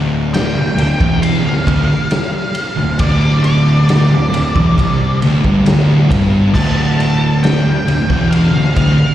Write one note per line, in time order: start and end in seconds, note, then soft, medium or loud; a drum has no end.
0.00 0.53 D1 medium
0.00 0.56 D2 loud
0.34 1.19 G5 loud
0.34 snare loud
0.34 ride loud
0.57 0.77 D1 medium
0.57 0.76 D2 medium
0.78 0.99 D1 medium
0.78 1.00 D2 medium
0.78 ride medium
1.00 1.42 E1 loud
1.00 1.44 E2 loud
1.00 kick loud
1.23 3.05 F5 loud
1.23 ride loud
1.44 1.66 D1 loud
1.44 1.66 D2 medium
1.67 1.88 D1 loud
1.67 1.88 D2 loud
1.67 kick loud
1.67 ride medium
1.91 snare soft
2.11 snare loud
2.11 ride loud
2.55 ride medium
2.77 2.98 D1 medium
2.77 2.99 D2 medium
2.99 4.07 D1 loud
2.99 4.10 D2 loud
2.99 3.42 D5 medium
2.99 kick loud
2.99 ride loud
3.44 5.17 D5 medium
3.44 ride medium
3.89 snare loud
3.89 ride loud
4.10 4.31 D1 medium
4.10 4.31 D2 medium
4.33 4.54 D1 medium
4.33 4.55 D2 medium
4.33 ride medium
4.56 4.76 E1 loud
4.56 4.76 E2 loud
4.56 kick loud
4.78 5.19 C2 loud
4.78 5.21 C3 loud
4.78 kick loud
4.78 ride loud
5.22 5.43 D1 loud
5.22 5.43 D2 loud
5.22 ride medium
5.44 5.65 G1 loud
5.44 5.65 G2 loud
5.44 kick loud
5.65 6.08 D1 medium
5.65 6.09 D2 loud
5.65 snare loud
5.65 ride loud
5.69 6.11 D2 loud
6.11 6.52 G1 loud
6.11 6.54 G2 loud
6.11 kick loud
6.11 ride medium
6.52 7.62 D1 loud
6.52 7.63 D2 loud
6.52 7.43 A5 loud
6.52 kick loud
6.52 crash loud
6.57 7.64 D2 loud
7.00 ride medium
7.43 8.28 G5 loud
7.43 snare loud
7.43 ride medium
7.65 7.86 D1 medium
7.65 7.86 D2 medium
7.88 8.09 D1 medium
7.88 8.09 D2 medium
7.88 ride medium
8.10 8.51 E1 loud
8.10 8.53 E2 loud
8.10 kick loud
8.31 9.15 F5 loud
8.31 ride loud
8.54 8.75 D1 medium
8.54 8.75 D2 medium
8.76 8.98 D1 loud
8.76 8.97 D2 loud
8.76 kick loud
8.76 ride medium